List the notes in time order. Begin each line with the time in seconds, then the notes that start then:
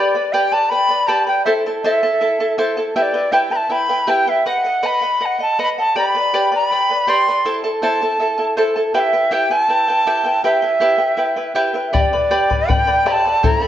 Already playing: G4 B4 D5 G5 B5
0.15 B4 D5 B5
0.33 G4 B4 D5 G5 B5
0.52 B4 D5 A5 B5
0.69 B4 D5 G5 B5
0.89 B4 D5 B5
1.07 G4 B4 D5 G5 A5 B5
1.27 B4 D5 G5 B5
1.45 E4 A4 C5 E5 A5
1.66 E4 A4 A5
1.84 E4 A4 C5 E5 A5
2.03 E4 A4 A5
2.21 E4 A4 E5 A5
2.40 E4 A4 A5
2.58 E4 A4 C5 E5 A5
2.77 E4 A4 A5
2.96 E4 G4 B4 E5 G5
3.02 D5
3.14 E4 B4 G5
3.32 E4 G4 B4 E5 G5
3.51 E4 B4 G5 B5
3.56 A5
3.70 E4 B4 E5 G5 B5
3.89 E4 B4 G5
4.07 E4 G4 B4 E5 G5
4.27 E4 B4 E5 G5
4.46 B4 D#5 F#5
4.65 D#5 F#5
4.83 B4 D#5 F#5 B5
5.01 D#5 F#5
5.20 B4 D#5 F#5
5.25 F#5
5.39 D#5 F#5 A5
5.59 B4 D#5 F#5
5.63 B5
5.78 D#5 F#5 A5
5.95 G4 B4 D5 G5 B5
6.15 B4 D5 B5
6.34 G4 B4 D5 G5 B5
6.52 B4 D5 B5
6.71 B4 D5 G5 B5
6.90 B4 D5 B5
7.07 G4 B4 D5 G5 B5 C6
7.28 B4 D5 B5
7.45 E4 A4 C5 E5 A5
7.64 E4 A4 A5
7.82 E4 A4 C5 E5 A5
8.02 E4 A4 A5
8.20 E4 A4 E5 A5
8.38 E4 A4 A5
8.57 E4 A4 C5 E5 A5
8.76 E4 A4 A5
8.94 E4 G4 B4 E5 F#5 G5
8.99 E5
9.13 E4 B4 G5
9.31 E4 G4 B4 E5 G5
9.51 E4 B4 G5 A5
9.69 E4 B4 E5 G5
9.88 E4 B4 G5
10.07 E4 G4 B4 E5 G5
10.24 E4 B4 G5
10.44 E4 G4 B4 E5 G5
10.62 E4 B4 G5
10.80 E4 G4 B4 E5 G5
10.98 E4 B4 G5
11.17 E4 B4 E5 G5
11.36 E4 B4 G5
11.55 E4 G4 B4 E5 G5
11.74 E4 B4 G5
11.88 E5
11.93 G4 B4 D5 G5 B5, bombo low
11.97 D5 E5
12.13 B4 D5 B5
12.31 G4 B4 D5 G5 B5
12.50 B4 D5 B5, bombo low
12.68 B4 D5 G5 B5, bombo low
12.87 B4 D5 B5
13.06 G4 B4 D5 G5 B5, bombo rim
13.12 A5
13.25 B4 D5 B5
13.43 E4 A4 C5 E5 A5 A#5, bombo low
13.61 E4 A4 A5 B5